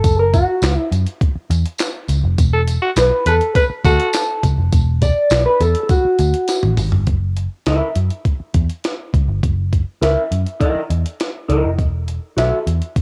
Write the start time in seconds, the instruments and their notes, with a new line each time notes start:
Already playing: clean electric guitar A4
0.04 picked electric bass F#1, kick, closed hi-hat, tambourine
0.19 clean electric guitar A#4
0.34 clean electric guitar F#4, kick, closed hi-hat, tambourine
0.62 picked electric bass C#2, snare, clap, closed hi-hat, tambourine
0.76 clean electric guitar E4
0.91 picked electric bass F#2, closed hi-hat, tambourine
1.06 closed hi-hat
1.21 kick, closed hi-hat
1.35 muted picked electric bass stroke
1.50 picked electric bass E2, closed hi-hat, tambourine
1.66 closed hi-hat
1.78 snare, clap, closed hi-hat, tambourine
2.08 picked electric bass C#2, closed hi-hat, tambourine
2.24 picked electric bass F1
2.38 picked electric bass E1, kick, closed hi-hat, tambourine
2.53 tenor saxophone A4
2.67 closed hi-hat, tambourine
2.82 tenor saxophone F#4
2.96 picked electric bass B1, clean electric guitar B4, snare, clap, closed hi-hat, tambourine
3.26 picked electric bass E2, clean electric guitar A4, tenor saxophone B4, closed hi-hat, tambourine
3.41 closed hi-hat
3.55 tenor saxophone B4, clean electric guitar B4, kick, closed hi-hat, tambourine
3.70 muted picked electric bass stroke
3.85 picked electric bass D2, tenor saxophone F#4, clean electric guitar A4, kick, closed hi-hat, tambourine
4.00 closed hi-hat
4.13 snare, clap, closed hi-hat, tambourine
4.43 picked electric bass C#2, kick, closed hi-hat, tambourine
4.58 picked electric bass F1
4.73 picked electric bass E1, kick, closed hi-hat, tambourine
5.02 clean electric guitar D5, kick, closed hi-hat, tambourine
5.30 picked electric bass B1, snare, clap, closed hi-hat, tambourine
5.46 clean electric guitar B4
5.61 picked electric bass E2, clean electric guitar A4, closed hi-hat, tambourine
5.75 closed hi-hat
5.83 clean electric guitar A4
5.89 clean electric guitar F#4, kick, closed hi-hat, tambourine
6.05 muted picked electric bass stroke
6.19 picked electric bass D2, closed hi-hat, tambourine
6.34 closed hi-hat
6.48 snare, closed hi-hat, tambourine
6.63 picked electric bass A1, high tom
6.77 picked electric bass G#1, mid tom, open hi-hat, tambourine
6.92 picked electric bass G1, floor tom
7.07 picked electric bass F#1, kick, closed hi-hat
7.37 closed hi-hat
7.66 picked electric bass C#2, clean electric guitar E4 A#4 E5, snare, closed hi-hat
7.95 picked electric bass F#2, closed hi-hat
8.10 closed hi-hat
8.25 kick, closed hi-hat
8.40 muted picked electric bass stroke
8.54 picked electric bass E2, kick, closed hi-hat
8.70 closed hi-hat
8.84 snare, closed hi-hat
9.14 picked electric bass C#2, kick, closed hi-hat
9.28 picked electric bass G1
9.43 picked electric bass F#1, kick, closed hi-hat
9.73 kick, closed hi-hat
10.01 picked electric bass C#2, clean electric guitar E4 A#4 E5, snare, closed hi-hat
10.32 picked electric bass F#2, closed hi-hat
10.47 closed hi-hat
10.60 clean electric guitar E4 A#4 D#5, kick, closed hi-hat
10.75 muted picked electric bass stroke
10.90 picked electric bass E2, closed hi-hat
11.06 closed hi-hat
11.20 snare, closed hi-hat
11.48 picked electric bass C#2, clean electric guitar E4 A#4 D#5, closed hi-hat
11.64 picked electric bass F1
11.79 picked electric bass E1, kick, closed hi-hat
12.08 closed hi-hat
12.37 picked electric bass B1, clean electric guitar F#4 A4 E5, snare, closed hi-hat
12.67 picked electric bass E2, closed hi-hat
12.82 closed hi-hat
12.96 muted picked electric bass stroke, kick, closed hi-hat